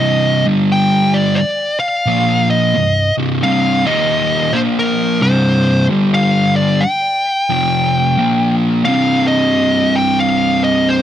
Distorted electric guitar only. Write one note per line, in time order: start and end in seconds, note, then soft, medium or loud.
0.00 0.45 C2 loud
0.00 0.45 G2 medium
0.00 0.46 C3 loud
0.46 1.39 G2 medium
0.46 1.39 D3 loud
0.46 1.39 G3 loud
2.06 2.74 A#2 loud
2.06 2.74 F3 loud
2.06 2.74 A#3 loud
2.75 3.10 C2 medium
2.75 3.10 G2 medium
3.18 3.41 C2 medium
3.18 3.42 G2 loud
3.18 3.42 C3 loud
3.42 3.85 C2 medium
3.42 3.86 G2 loud
3.42 3.87 C3 loud
3.85 4.52 D#2 medium
3.85 4.51 A#2 loud
3.85 4.53 D#3 medium
4.53 5.20 A#2 medium
4.53 5.20 F3 medium
4.53 5.20 A#3 loud
5.21 5.88 C2 medium
5.21 5.88 G2 loud
5.21 5.88 C3 loud
5.89 6.81 G2 medium
5.89 6.81 D3 medium
5.89 6.82 G3 loud
7.49 8.16 F2 medium
7.49 8.17 C3 loud
7.49 8.17 F3 loud
8.18 8.84 A#2 medium
8.18 8.84 F3 loud
8.18 8.85 A#3 loud
8.84 11.02 C2 medium
8.84 11.02 G2 loud
8.84 11.02 C3 loud